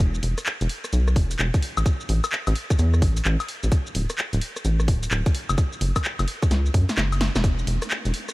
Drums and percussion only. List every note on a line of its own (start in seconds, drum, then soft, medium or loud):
0.00 kick loud
0.00 closed hi-hat medium
0.00 shaker medium
0.14 shaker soft
0.23 open hi-hat loud
0.38 cross-stick medium
0.38 closed hi-hat medium
0.38 shaker medium
0.46 clap loud
0.46 shaker medium
0.61 closed hi-hat medium
0.61 shaker soft
0.69 open hi-hat medium
0.84 cross-stick medium
0.84 closed hi-hat soft
0.84 shaker medium
0.93 closed hi-hat medium
0.93 shaker medium
1.08 cross-stick medium
1.08 shaker soft
1.16 kick loud
1.16 open hi-hat loud
1.31 closed hi-hat medium
1.31 shaker medium
1.39 clap loud
1.39 shaker medium
1.54 kick loud
1.54 closed hi-hat medium
1.54 shaker soft
1.62 open hi-hat medium
1.77 closed hi-hat soft
1.77 high woodblock medium
1.77 shaker medium
1.86 kick loud
1.86 closed hi-hat medium
1.86 shaker medium
2.01 shaker soft
2.09 open hi-hat loud
2.24 cross-stick medium
2.24 closed hi-hat medium
2.24 high woodblock medium
2.24 shaker medium
2.32 clap loud
2.32 shaker medium
2.47 closed hi-hat medium
2.47 high woodblock medium
2.47 shaker soft
2.55 open hi-hat medium
2.70 kick loud
2.70 cross-stick medium
2.70 closed hi-hat soft
2.70 shaker medium
2.79 closed hi-hat medium
2.79 shaker medium
2.94 cross-stick medium
2.94 shaker soft
3.02 kick loud
3.02 open hi-hat loud
3.17 closed hi-hat medium
3.17 shaker medium
3.25 clap loud
3.25 shaker medium
3.40 closed hi-hat medium
3.40 high woodblock medium
3.40 shaker soft
3.48 open hi-hat medium
3.63 closed hi-hat soft
3.63 shaker medium
3.72 kick loud
3.72 closed hi-hat medium
3.72 shaker medium
3.87 shaker soft
3.95 open hi-hat loud
4.10 cross-stick medium
4.10 closed hi-hat medium
4.10 shaker medium
4.18 clap loud
4.18 shaker medium
4.33 closed hi-hat medium
4.33 shaker soft
4.41 open hi-hat loud
4.56 cross-stick medium
4.56 closed hi-hat soft
4.56 shaker medium
4.65 closed hi-hat medium
4.65 shaker medium
4.80 cross-stick medium
4.80 shaker soft
4.88 kick loud
4.88 open hi-hat loud
5.03 closed hi-hat medium
5.03 shaker medium
5.11 clap loud
5.11 shaker medium
5.26 kick loud
5.26 closed hi-hat medium
5.26 shaker soft
5.35 open hi-hat medium
5.49 closed hi-hat soft
5.49 high woodblock medium
5.49 shaker medium
5.58 kick loud
5.58 closed hi-hat medium
5.58 shaker medium
5.73 shaker soft
5.81 open hi-hat loud
5.96 kick medium
5.96 cross-stick medium
5.96 closed hi-hat medium
5.96 high woodblock medium
5.96 shaker medium
6.04 clap loud
6.04 shaker medium
6.19 closed hi-hat medium
6.19 high woodblock medium
6.19 shaker soft
6.28 open hi-hat loud
6.42 kick loud
6.42 cross-stick medium
6.42 closed hi-hat soft
6.42 shaker medium
6.51 snare medium
6.51 closed hi-hat medium
6.51 shaker soft
6.66 shaker soft
6.74 kick loud
6.74 open hi-hat loud
6.89 snare medium
6.89 closed hi-hat medium
6.89 shaker medium
6.98 snare medium
6.98 clap loud
6.98 shaker medium
7.12 closed hi-hat soft
7.12 high woodblock medium
7.12 shaker soft
7.21 snare loud
7.21 open hi-hat loud
7.36 snare loud
7.36 closed hi-hat soft
7.36 shaker medium
7.44 kick loud
7.44 closed hi-hat medium
7.44 shaker medium
7.59 shaker soft
7.67 open hi-hat loud
7.82 cross-stick medium
7.82 closed hi-hat medium
7.82 shaker medium
7.91 clap loud
7.91 shaker medium
8.05 closed hi-hat medium
8.05 shaker soft
8.14 open hi-hat medium
8.29 cross-stick medium
8.29 closed hi-hat soft
8.29 shaker medium